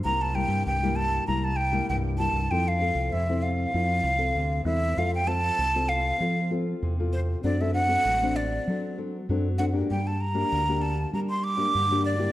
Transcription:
<<
  \new Staff \with { instrumentName = "Flute" } { \time 4/4 \key f \major \tempo 4 = 97 bes''16 a''16 g''8 g''8 a''8 bes''16 a''16 g''8 g''8 a''8 | g''16 f''8. e''8 f''2 e''8 | f''16 g''16 a''4 f''4 r4 c''8 | d''16 e''16 fis''4 d''4 r4 fis''8 |
g''16 a''16 bes''4 a''8 bes''16 c'''16 d'''4 d''8 | }
  \new Staff \with { instrumentName = "Nylon-string guitar" } { \time 4/4 \key f \major << { <g bes e'>8 <g bes e'>8. <g bes e'>8. <g bes e'>8 r16 <g bes e'>8. <g bes e'>16 r16 | <c' e' a'>8 <c' a'>8. <c' e' a'>8. <c' e' a'>8 r16 <c' a'>8. <c' e' a'>8 | <c' f' a'>8 <c' f' a'>8 r16 <c' f' a'>8. <c' f' a'>16 r16 <c' f' a'>8. <c' f' a'>8. | <c' d' a'>16 <c' d' a'>16 <c' d' a'>16 <c' d' a'>8 <c' d' a'>8. <c' d' a'>8 <c' d' a'>16 r16 <c' d' a'>16 r16 <c' d' a'>16 <bes d' g'>16~ |
<bes d' g'>16 r8 <bes d' g'>8 <bes d' g'>8. <bes d' g'>8. <bes d' g'>8 <bes d' g'>8 <bes e' g'>16 | } \\ { c4 g,4 c4 g,4 | f4 c4 f4 c4 | f4 c4 f4 c4 | fis4 fis4 fis4 fis4 |
g4 d4 g4 d4 | } >> }
  \new Staff \with { instrumentName = "Fingered electric bass" } { \clef bass \time 4/4 \key f \major c,8. g,16 c,4 c,4 c,8. c,16 | f,8. c,16 f,4 f,8 c,8 d,8 e,8 | f,4 c,4 f4 e,4 | fis,4 a,,4 fis4 fis,4 |
g,4 d,4 g4 g,4 | }
>>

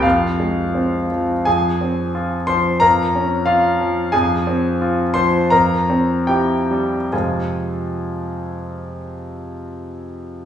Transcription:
<<
  \new Staff \with { instrumentName = "Grand piano" } { \time 2/4 \key f \minor \tempo 4 = 84 <f' f''>4. r8 | <aes' aes''>4. <c'' c'''>8 | <bes' bes''>4 <f' f''>4 | <aes' aes''>4. <c'' c'''>8 |
<bes' bes''>4 <g' g''>4 | <f, c aes c' f' aes' aes''>2~ | <f, c aes c' f' aes' aes''>2 | }
  \new Staff \with { instrumentName = "Grand piano" } { \clef bass \time 2/4 \key f \minor f,8 aes8 c'8 f8 | f,8 c'8 f'8 f8 | f,8 des'4 f8 | f,8 c'8 f'8 f8 |
f,8 c'8 e'8 g8 | r2 | r2 | }
>>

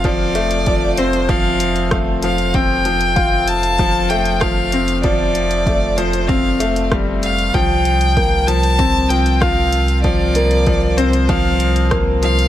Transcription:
<<
  \new Staff \with { instrumentName = "Violin" } { \time 4/4 \key f \major \tempo 4 = 96 d''4. c''8 f''4 r8 f''8 | g''4. a''4 g''8 f''4 | d''4. c''8 f''4 r8 f''8 | g''4. a''4 g''8 f''4 |
d''4. c''8 f''4 r8 f''8 | }
  \new Staff \with { instrumentName = "Upright piano" } { \clef bass \time 4/4 \key f \major f8 a8 f8 c'8 f8 r8 a8 f8 | c'8 f8 f'8 r8 f8 a8 f8 c'8 | f8 r8 a8 f8 c'8 a8 g8 r8 | f8 r8 bes8 f8 c'8 f8 f'8 r8 |
f8 bes8 f8 c'8 f8 r8 bes8 f8 | }
  \new Staff \with { instrumentName = "Sub bass" } { \clef bass \time 4/4 \key f \major f,,1~ | f,,1~ | f,,1 | c,1~ |
c,1 | }
  \new DrumStaff \with { instrumentName = "Drums" } \drummode { \time 4/4 <hh bd>8 hh16 hh16 <hh bd>8 hh16 hh16 <hh bd>8 hh16 hh16 <hh bd ss>8 hh16 hh16 | <hh bd>8 hh16 hh16 <hh bd>8 hh16 hh16 <hh bd>8 hh16 hh16 <hh bd ss>8 hh16 hh16 | <hh bd>8 hh16 hh16 <hh bd>8 hh16 hh16 <hh bd>8 hh16 hh16 <hh bd ss>8 hh16 hh16 | <hh bd>8 hh16 hh16 <hh bd>8 hh16 hh16 <hh bd>8 hh16 hh16 <hh bd ss>8 hh16 hh16 |
<hh bd>8 hh16 hh16 <hh bd>8 hh16 hh16 <hh bd>8 hh16 hh16 <hh bd ss>8 hh16 hh16 | }
>>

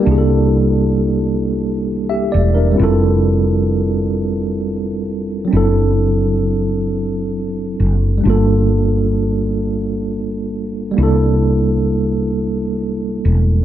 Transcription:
<<
  \new Staff \with { instrumentName = "Tine electric piano" } { \time 6/8 \key c \mixolydian \tempo 4. = 44 << { g'16 r2 <g' e''>16 d''16 <d' bes'>16~ | <d' bes'>16 r2 r8. | r2. | r2. |
r2. | } \\ { <g bes d' e' aes' a'>2. | <g c' e' f' a'>2. | <fis c' d' e' a'>2. | <g a bes d' f' a'>2. |
<g bes d' e' a'>2. | } >> }
  \new Staff \with { instrumentName = "Fretless electric bass" } { \clef bass \time 6/8 \key c \mixolydian c,2~ c,8 e,,8 | f,,2. | fis,,2~ fis,,8 fis,,8 | g,,2. |
c,2~ c,8 e,,8 | }
>>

